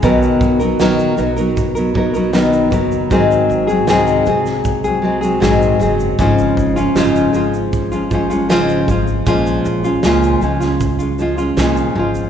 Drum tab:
SH |xxxxxxxxxx-xxxxx|xxxxxxxxxx-xxxxx|xxxxxxxxxxxxxxxx|xxxxxxxxxxxxxx-x|
SD |----o-------o---|----o--o----o---|----o-------o---|----o--o----o---|
BD |o-o-----o-o---o-|o-------o-------|o-o-----o-o---o-|o-------o-------|